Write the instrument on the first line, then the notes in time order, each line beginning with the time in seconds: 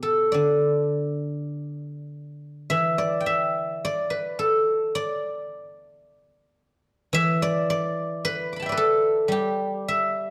guzheng
Already playing: B2 G4 B4
0.03 A4
0.32 D3 D5
2.70 E3 E5
2.98 D5
3.20 G5
3.26 E5
3.85 D5
4.10 B4
4.39 A4
4.95 D5
7.13 E3 E5
7.42 D5
7.70 D5
8.25 B4
8.53 B5 D6
8.60 G5 A5
8.66 D5 E5
8.72 B4
8.77 A4
9.28 G3 G4
9.88 E5